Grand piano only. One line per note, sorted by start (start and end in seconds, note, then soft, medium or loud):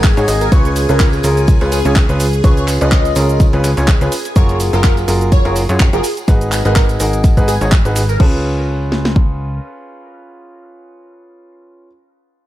0.17 0.26 D#4 loud
0.17 0.26 F#4 medium
0.17 0.26 G#4 medium
0.17 0.26 C#5 loud
0.28 0.45 D#4 medium
0.28 0.44 F#4 medium
0.28 0.45 G#4 medium
0.28 0.44 D#5 medium
0.52 0.86 C#4 medium
0.52 0.86 F4 medium
0.52 0.86 G#4 medium
0.52 0.86 B4 medium
0.89 1.21 C#4 medium
0.89 1.21 F4 medium
0.89 1.21 G#4 medium
0.89 1.21 B4 medium
1.24 1.58 C#4 medium
1.24 1.58 F4 medium
1.24 1.58 G#4 medium
1.24 1.58 A#4 medium
1.61 1.76 C#4 medium
1.61 1.76 F4 medium
1.61 1.76 G#4 medium
1.61 1.76 B4 medium
1.85 1.94 C#4 medium
1.85 1.94 F4 medium
1.85 1.94 G#4 medium
1.85 1.94 C#5 medium
2.09 2.24 C#4 medium
2.09 2.24 F4 medium
2.09 2.24 G#4 medium
2.09 2.24 B4 medium
2.44 2.78 C#4 medium
2.44 2.78 F4 medium
2.44 2.78 G#4 medium
2.44 2.78 B4 medium
2.81 3.13 C#4 medium
2.81 3.13 F4 medium
2.81 3.13 G#4 medium
2.81 3.13 B4 medium
3.16 3.50 C#4 medium
3.16 3.50 F4 medium
3.16 3.50 G#4 medium
3.16 3.50 A#4 medium
3.53 3.68 C#4 medium
3.53 3.68 F4 medium
3.53 3.68 G#4 medium
3.53 3.68 B4 loud
3.77 3.86 C#4 medium
3.77 3.86 F4 medium
3.77 3.86 G#4 medium
3.77 3.86 C#5 medium
4.01 4.11 C#4 medium
4.01 4.11 F4 medium
4.01 4.11 G#4 medium
4.01 4.11 B4 medium
4.36 4.70 F4 medium
4.36 4.70 F#4 medium
4.36 4.70 G#4 medium
4.36 4.70 A#4 medium
4.73 5.05 F4 medium
4.73 5.05 F#4 medium
4.73 5.05 G#4 medium
4.73 5.05 A#4 medium
5.08 5.42 F4 medium
5.08 5.42 F#4 medium
5.08 5.42 G#4 medium
5.08 5.42 A#4 medium
5.45 5.60 F4 medium
5.45 5.60 F#4 medium
5.45 5.60 G#4 medium
5.45 5.60 A#4 loud
5.69 5.78 F4 medium
5.69 5.78 F#4 medium
5.69 5.78 G#4 medium
5.69 5.78 C#5 medium
5.93 6.03 F4 medium
5.93 6.03 F#4 medium
5.93 6.03 G#4 medium
5.93 6.03 A#4 medium
6.28 6.62 D#4 medium
6.28 6.62 F#4 medium
6.28 6.62 G#4 medium
6.28 6.62 B4 medium
6.65 6.97 D#4 medium
6.65 6.97 F#4 medium
6.65 6.97 G#4 medium
6.65 6.97 B4 medium
7.00 7.34 D#4 medium
7.00 7.34 F#4 medium
7.00 7.34 G#4 medium
7.00 7.34 A#4 medium
7.37 7.52 D#4 medium
7.37 7.52 F#4 medium
7.37 7.52 G#4 medium
7.37 7.52 B4 loud
7.61 7.70 D#4 medium
7.61 7.70 F#4 medium
7.61 7.70 G#4 medium
7.61 7.70 C#5 medium
7.85 8.00 D#4 medium
7.85 8.00 F#4 medium
7.85 8.00 G#4 medium
7.85 8.00 B4 medium
8.20 11.87 C#4 medium
8.20 11.87 F4 medium
8.20 11.87 G#4 medium
8.20 11.87 B4 medium